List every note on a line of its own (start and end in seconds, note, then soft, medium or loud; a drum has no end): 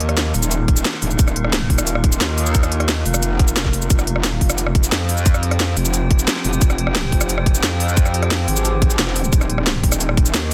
0.00 0.33 D#2 loud
0.00 3.86 D#3 medium
0.00 3.86 A#3 medium
0.00 3.86 F4 medium
0.00 closed hi-hat medium
0.09 cross-stick soft
0.09 closed hi-hat soft
0.17 snare loud
0.17 closed hi-hat medium
0.17 cabasa medium
0.34 0.84 D#1 loud
0.34 open hi-hat medium
0.34 cabasa soft
0.43 closed hi-hat soft
0.43 cabasa medium
0.51 closed hi-hat medium
0.51 cabasa soft
0.68 kick loud
0.68 closed hi-hat medium
0.77 closed hi-hat soft
0.77 cabasa medium
0.85 snare loud
0.85 closed hi-hat loud
0.85 cabasa medium
0.94 snare soft
1.02 1.18 D#1 loud
1.02 open hi-hat medium
1.02 cabasa soft
1.11 cabasa soft
1.19 1.69 D#1 loud
1.19 kick loud
1.19 closed hi-hat loud
1.19 cabasa medium
1.28 cross-stick soft
1.28 cabasa soft
1.36 closed hi-hat medium
1.44 cross-stick soft
1.53 snare loud
1.53 closed hi-hat loud
1.53 cabasa medium
1.70 2.19 D#1 loud
1.70 kick medium
1.70 open hi-hat medium
1.78 cross-stick medium
1.78 closed hi-hat soft
1.78 cabasa medium
1.87 closed hi-hat medium
1.87 cabasa soft
1.95 cross-stick medium
2.04 kick loud
2.04 closed hi-hat medium
2.12 closed hi-hat soft
2.12 cabasa medium
2.21 3.04 D#2 loud
2.21 snare loud
2.21 closed hi-hat loud
2.21 cabasa medium
2.38 open hi-hat medium
2.38 cabasa soft
2.46 cabasa soft
2.55 kick loud
2.55 closed hi-hat loud
2.55 cabasa medium
2.63 cross-stick soft
2.63 closed hi-hat soft
2.63 cabasa soft
2.72 closed hi-hat medium
2.80 cross-stick soft
2.80 closed hi-hat soft
2.89 snare loud
2.89 closed hi-hat loud
2.89 cabasa soft
3.06 3.89 F1 loud
3.06 open hi-hat medium
3.06 cabasa soft
3.14 cross-stick medium
3.14 closed hi-hat soft
3.14 cabasa medium
3.23 closed hi-hat medium
3.23 cabasa soft
3.39 kick loud
3.39 closed hi-hat medium
3.48 closed hi-hat soft
3.48 cabasa medium
3.56 snare loud
3.56 closed hi-hat loud
3.56 cabasa medium
3.65 kick medium
3.65 snare soft
3.73 open hi-hat medium
3.73 cabasa soft
3.82 cabasa soft
3.90 4.40 F1 loud
3.90 9.29 F3 medium
3.90 9.29 C4 medium
3.90 9.29 G4 medium
3.90 kick loud
3.90 closed hi-hat loud
3.90 cabasa medium
3.99 cross-stick soft
3.99 cabasa soft
4.07 closed hi-hat medium
4.16 cross-stick soft
4.24 snare loud
4.24 closed hi-hat loud
4.24 cabasa medium
4.41 4.91 F1 loud
4.41 kick medium
4.41 open hi-hat medium
4.50 cross-stick medium
4.50 closed hi-hat soft
4.50 cabasa medium
4.58 closed hi-hat medium
4.58 cabasa soft
4.67 cross-stick medium
4.75 kick loud
4.75 closed hi-hat medium
4.84 closed hi-hat soft
4.84 cabasa medium
4.92 5.75 F2 loud
4.92 snare loud
4.92 closed hi-hat loud
4.92 cabasa medium
5.09 open hi-hat medium
5.09 cabasa soft
5.17 cabasa soft
5.26 kick loud
5.26 closed hi-hat medium
5.26 cabasa soft
5.34 cross-stick medium
5.34 cabasa soft
5.43 closed hi-hat medium
5.51 cross-stick soft
5.51 closed hi-hat soft
5.60 snare loud
5.60 closed hi-hat loud
5.60 cabasa soft
5.77 6.26 F1 loud
5.77 open hi-hat medium
5.77 cabasa soft
5.85 closed hi-hat soft
5.85 cabasa medium
5.94 closed hi-hat medium
5.94 cabasa soft
6.11 kick loud
6.11 closed hi-hat medium
6.19 closed hi-hat soft
6.19 cabasa medium
6.28 snare loud
6.28 closed hi-hat loud
6.28 cabasa medium
6.36 snare soft
6.45 6.60 F1 loud
6.45 open hi-hat medium
6.45 cabasa soft
6.53 cabasa soft
6.61 7.11 F1 medium
6.61 kick loud
6.61 closed hi-hat medium
6.61 cabasa soft
6.70 cross-stick soft
6.70 cabasa soft
6.78 closed hi-hat medium
6.87 cross-stick soft
6.95 snare loud
6.95 closed hi-hat medium
6.95 cabasa soft
7.12 7.62 F1 loud
7.12 kick medium
7.12 open hi-hat medium
7.21 cross-stick medium
7.21 closed hi-hat soft
7.21 cabasa medium
7.29 closed hi-hat medium
7.29 cabasa soft
7.38 cross-stick medium
7.46 kick loud
7.46 closed hi-hat medium
7.55 closed hi-hat soft
7.55 cabasa medium
7.63 8.47 F2 loud
7.63 snare loud
7.63 closed hi-hat loud
7.63 cabasa soft
7.80 open hi-hat medium
7.80 cabasa soft
7.89 cabasa soft
7.97 kick loud
7.97 closed hi-hat medium
7.97 cabasa medium
8.06 cross-stick soft
8.06 cabasa soft
8.14 closed hi-hat medium
8.23 cross-stick soft
8.23 closed hi-hat soft
8.31 snare loud
8.31 closed hi-hat medium
8.31 cabasa soft
8.48 8.97 G#1 loud
8.48 open hi-hat medium
8.48 cabasa soft
8.56 closed hi-hat soft
8.56 cabasa medium
8.65 closed hi-hat medium
8.65 cabasa soft
8.82 kick loud
8.82 closed hi-hat medium
8.90 closed hi-hat soft
8.90 cabasa medium
8.99 9.31 F1 loud
8.99 snare loud
8.99 closed hi-hat medium
8.99 cabasa soft
9.07 snare soft
9.16 open hi-hat medium
9.16 cabasa soft
9.24 cabasa soft
9.33 9.82 D#1 loud
9.33 10.54 D#3 medium
9.33 10.54 A#3 medium
9.33 10.54 F4 loud
9.33 kick loud
9.33 closed hi-hat medium
9.33 cabasa soft
9.41 cross-stick soft
9.41 cabasa soft
9.50 closed hi-hat medium
9.58 cross-stick soft
9.67 snare loud
9.67 closed hi-hat medium
9.67 cabasa soft
9.83 10.33 D#1 loud
9.83 kick medium
9.83 open hi-hat medium
9.92 cross-stick medium
9.92 closed hi-hat soft
9.92 cabasa medium
10.00 closed hi-hat medium
10.00 cabasa soft
10.09 cross-stick medium
10.17 kick loud
10.17 closed hi-hat medium
10.26 closed hi-hat soft
10.26 cabasa medium
10.34 10.54 D#2 loud
10.34 snare loud
10.34 closed hi-hat medium
10.34 cabasa medium